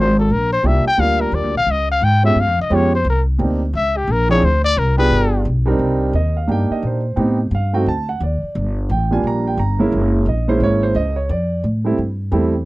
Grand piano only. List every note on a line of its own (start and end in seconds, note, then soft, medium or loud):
0.00 0.13 F#3 medium
0.00 0.13 C4 medium
0.00 0.13 D4 medium
0.00 0.13 F4 medium
0.00 0.14 A#4 medium
0.63 0.84 G3 medium
0.63 0.84 A#3 soft
0.63 0.84 D4 soft
0.63 0.84 F4 soft
0.63 0.84 G4 medium
0.98 1.50 G3 medium
0.98 1.50 A#3 medium
0.98 1.51 D4 soft
0.98 1.51 F4 medium
0.98 1.51 A#4 medium
2.23 2.35 G#3 medium
2.23 2.35 B3 medium
2.23 2.35 C#4 medium
2.23 2.35 F4 medium
2.23 2.35 G4 medium
2.70 2.90 G#3 medium
2.70 2.90 B3 medium
2.70 2.90 C#4 medium
2.70 2.91 F4 medium
2.70 2.91 G4 medium
3.39 3.59 A#3 medium
3.39 3.59 C4 medium
3.39 3.59 D4 soft
3.39 3.59 D#4 soft
3.39 3.59 G4 medium
4.29 4.41 F3 medium
4.29 4.41 C4 medium
4.29 4.41 D4 medium
4.29 4.41 E4 medium
4.29 4.41 G#4 medium
4.97 5.43 B3 medium
4.97 5.43 D4 medium
4.97 5.43 F4 medium
4.97 5.42 G4 medium
4.97 5.43 G#4 medium
5.66 6.11 G3 medium
5.66 6.11 C4 medium
5.66 6.11 D4 medium
5.66 6.12 D#4 medium
5.66 6.12 A#4 medium
6.15 6.36 D#5 medium
6.37 6.49 F5 medium
6.48 7.00 A#3 medium
6.48 7.00 D4 medium
6.48 7.00 D#4 medium
6.48 7.00 G4 medium
6.52 6.71 G5 medium
6.72 6.83 D#5 medium
6.87 7.37 C5 medium
7.16 7.36 B3 medium
7.16 7.36 C4 medium
7.16 7.37 D#4 medium
7.16 7.37 G4 medium
7.55 7.74 F5 medium
7.73 7.85 A3 medium
7.73 7.85 C4 medium
7.73 7.85 D#4 medium
7.73 7.85 F#4 medium
7.73 7.86 G5 medium
7.88 8.08 A5 medium
8.09 8.21 F#5 medium
8.23 8.74 D5 medium
8.91 9.11 G5 medium
9.11 9.55 G3 medium
9.11 9.55 A#3 medium
9.11 9.56 D4 medium
9.11 9.56 F4 medium
9.11 9.24 G#5 medium
9.27 9.46 A#5 medium
9.47 9.58 G5 medium
9.59 10.11 A#5 medium
9.79 10.24 G#3 medium
9.79 10.24 A#3 medium
9.79 10.24 C#4 medium
9.79 10.24 E4 medium
10.29 10.49 D#5 medium
10.48 10.92 G#3 medium
10.48 10.93 A#3 medium
10.48 10.93 C#4 medium
10.48 10.93 E4 medium
10.48 10.61 C5 medium
10.63 10.83 C#5 medium
10.83 10.95 C5 medium
10.96 11.17 D#5 medium
11.16 11.29 C#5 medium
11.30 11.62 D5 medium
11.85 11.96 G3 medium
11.85 11.97 A3 medium
11.85 11.97 C4 medium
11.85 11.97 E4 medium
12.32 12.52 G3 medium
12.32 12.52 A3 medium
12.32 12.52 C4 medium
12.32 12.52 E4 medium